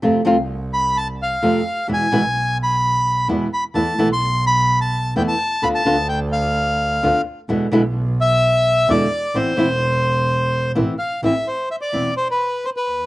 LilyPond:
<<
  \new Staff \with { instrumentName = "Bandoneon" } { \time 4/4 \key a \minor \tempo 4 = 129 r4. b''8 a''8 f''4. | gis''4. b''4. r8 b''8 | a''8. c'''8. b''8. a''8. g''16 a''8. | b''16 a''8. g''8 f''2 r8 |
r4. e''4. d''4 | c''2. r8 f''8 | e''8 c''8 e''16 d''8. c''16 b'8. c''16 b'8. | }
  \new Staff \with { instrumentName = "Nylon-string guitar" } { \time 4/4 \key a \minor <c f a c' f'>8 <c f a c' f'>8 r2 <c f a c' f'>8 r8 | <b, e gis b e'>8 <b, e gis b e'>8 r2 <b, e gis b e'>8 r8 | <e a b e'>8 <e a b e'>8 r2 <e a b e'>8 r8 | <d b d' f'>8 <d b d' f'>8 r2 <d b d' f'>8 r8 |
<b, d gis b e'>8 <b, d gis b e'>8 r2 <b, d gis b e'>8 r8 | <e b c' e'>8 <e b c' e'>8 r2 <e b c' e'>8 r8 | <e b c' e'>8 r4 <e b c' e'>8 r2 | }
  \new Staff \with { instrumentName = "Double bass" } { \clef bass \time 4/4 \key a \minor f,8 c,2~ c,8 f,8 r8 | e,8 b,,2~ b,,8 e,8 r8 | e,8 b,,2~ b,,8 e,8 r8 | d,8 d,2~ d,8 d,8 r8 |
e,8 b,,2~ b,,8 e,8 r8 | a,,8 e,,2~ e,,8 a,,8 r8 | a,,8 r4 e,,8 r4. dis,8 | }
>>